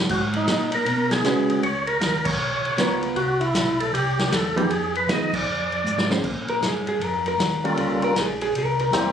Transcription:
0.09 0.47 G#2 medium
0.09 0.22 F#4 medium
0.09 kick medium
0.09 crash medium
0.33 0.71 D#4 medium
0.33 ride soft
0.47 0.85 A#2 medium
0.47 snare medium
0.47 hi-hat pedal soft
0.47 ride medium
0.72 1.09 A#4 medium
0.72 ride medium
0.85 1.23 B2 medium
0.85 ride medium
1.11 1.60 G#4 medium
1.11 snare soft
1.11 ride soft
1.24 1.61 C#3 medium
1.24 1.63 G#3 medium
1.24 1.64 C#4 medium
1.24 1.64 F#4 medium
1.24 1.64 B4 medium
1.24 snare medium
1.24 hi-hat pedal medium
1.24 ride medium
1.50 ride medium
1.62 2.00 C#2 medium
1.62 1.86 C#5 loud
1.62 ride medium
1.87 2.27 A#4 medium
1.87 ride soft
2.00 2.38 D#2 medium
2.00 snare medium
2.00 hi-hat pedal soft
2.00 ride medium
2.25 2.98 C#5 medium
2.25 kick medium
2.25 crash medium
2.39 2.62 B1 medium
2.63 2.71 B1 soft
2.63 ride soft
2.77 3.15 C#2 medium
2.77 3.17 B3 medium
2.77 3.17 F4 medium
2.77 3.18 A#4 medium
2.77 snare medium
2.77 hi-hat pedal soft
2.77 ride medium
3.03 ride soft
3.16 3.53 C2 medium
3.16 3.42 F#4 medium
3.16 ride medium
3.40 3.80 E4 medium
3.40 ride soft
3.54 3.92 B1 medium
3.54 snare medium
3.54 hi-hat pedal medium
3.54 ride medium
3.80 3.93 A4 medium
3.80 ride medium
3.92 4.30 C2 medium
3.92 4.33 G4 medium
3.92 ride medium
4.19 snare soft
4.19 ride soft
4.31 4.68 E2 medium
4.31 4.57 A4 medium
4.31 snare medium
4.31 hi-hat pedal medium
4.31 ride medium
4.56 4.69 F3 medium
4.56 4.69 B3 medium
4.56 4.69 D#4 medium
4.56 4.71 G4 medium
4.56 4.69 G#4 medium
4.56 ride soft
4.69 5.07 F2 medium
4.69 4.93 G#4 loud
4.69 ride medium
4.95 5.10 B4 medium
4.95 ride soft
5.07 5.45 D#2 medium
5.07 5.31 F3 medium
5.07 5.31 B3 medium
5.07 5.31 D#4 medium
5.07 5.31 G#4 medium
5.07 5.35 D#5 loud
5.07 snare medium
5.07 hi-hat pedal medium
5.07 ride medium
5.33 6.07 D5 loud
5.33 kick medium
5.33 crash medium
5.46 5.84 F2 medium
5.72 ride soft
5.84 6.22 G#2 medium
5.84 hi-hat pedal medium
5.98 snare medium
6.10 6.23 A#3 medium
6.10 6.23 C#4 medium
6.10 6.23 G#4 medium
6.10 6.23 C5 medium
6.10 snare medium
6.24 6.61 A#2 medium
6.24 kick medium
6.24 crash medium
6.48 6.62 A#4 medium
6.48 ride soft
6.61 6.99 G2 medium
6.61 snare medium
6.61 hi-hat pedal soft
6.61 ride medium
6.66 6.87 G#4 medium
6.87 7.05 G#4 medium
6.87 ride soft
7.00 7.37 F2 medium
7.00 ride medium
7.05 7.26 A#4 medium
7.26 7.75 A#4 medium
7.26 ride soft
7.38 7.76 D#2 medium
7.38 snare medium
7.38 hi-hat pedal soft
7.38 ride medium
7.64 8.13 G3 medium
7.64 8.14 A#3 medium
7.64 8.14 C#4 medium
7.64 8.14 F4 medium
7.64 8.14 A4 medium
7.64 ride soft
7.76 8.14 C#2 medium
7.76 ride medium
8.02 8.17 A#4 medium
8.02 ride soft
8.15 8.53 A#1 medium
8.15 snare medium
8.15 hi-hat pedal medium
8.15 ride medium
8.19 8.41 G#4 medium
8.41 8.55 G#4 medium
8.41 ride soft
8.53 8.91 C2 medium
8.53 ride medium
8.58 8.80 A#4 medium
8.79 9.12 A#4 medium
8.79 ride soft
8.91 9.12 E2 medium
8.91 9.12 G3 medium
8.91 9.12 A#3 medium
8.91 9.12 C4 medium
8.91 9.12 E4 medium
8.91 9.12 G4 medium
8.91 snare medium
8.91 hi-hat pedal medium
8.91 ride medium

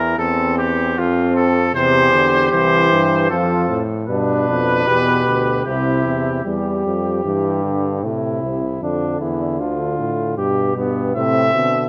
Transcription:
0.00 0.17 E2 medium
0.00 0.17 E4 medium
0.00 0.18 A#4 medium
0.18 0.98 E2 medium
0.18 0.96 C4 medium
0.18 0.57 A4 medium
0.58 1.00 G4 medium
0.97 1.74 F2 medium
0.97 1.58 C4 medium
0.97 1.35 F4 medium
1.36 1.74 A4 medium
1.74 2.51 E2 medium
1.74 2.10 C3 medium
1.74 3.33 G4 medium
1.74 2.51 C5 medium
2.13 2.51 D3 medium
2.52 2.91 C2 medium
2.52 3.29 E3 medium
2.52 3.29 C5 medium
2.91 3.29 G2 medium
3.30 3.80 F2 medium
3.30 3.68 F3 medium
3.30 3.81 F4 medium
3.30 3.80 A4 medium
3.69 4.10 A2 medium
4.08 4.45 G2 medium
4.08 4.86 B2 medium
4.08 4.89 D4 medium
4.08 5.62 B4 medium
4.48 4.87 F2 medium
4.87 5.26 E2 medium
4.87 5.67 B2 medium
4.87 5.66 G4 medium
5.27 5.65 D2 medium
5.65 6.05 C2 medium
5.65 6.44 C3 medium
5.65 6.44 E4 medium
5.65 6.43 G4 medium
6.05 6.44 E2 medium
6.45 6.82 E2 medium
6.45 7.21 G3 medium
6.45 8.00 G4 medium
6.86 7.24 F2 medium
7.24 8.05 G2 medium
7.24 7.63 E3 soft
7.64 8.02 D3 medium
8.03 8.42 A2 medium
8.03 8.64 C3 medium
8.03 8.81 E4 medium
8.43 8.81 C2 medium
8.81 9.20 F2 medium
8.81 10.34 D3 medium
8.81 9.20 D4 medium
9.20 9.61 E2 medium
9.20 9.61 E4 medium
9.60 9.98 D2 medium
9.60 10.37 F4 medium
9.99 10.37 A2 medium
10.37 10.76 G2 medium
10.37 11.14 B2 medium
10.37 10.76 G4 medium
10.76 11.15 G2 medium
10.76 11.15 B3 medium
11.15 11.54 A2 medium
11.15 11.54 C3 medium
11.15 11.77 C4 medium
11.15 11.89 E5 medium
11.55 11.89 B2 medium
11.55 11.89 D3 medium

